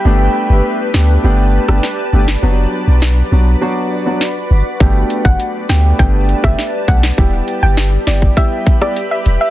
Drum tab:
HH |----------------|----------------|x-x-x-x-x-x-x-x-|x-x-x-x-x-x-x-x-|
SD |------o----ro--o|----o-------o---|------o----ro--o|----o-o----r----|
BD |----------------|----------------|o--o----o--o--o-|o------oo-o-----|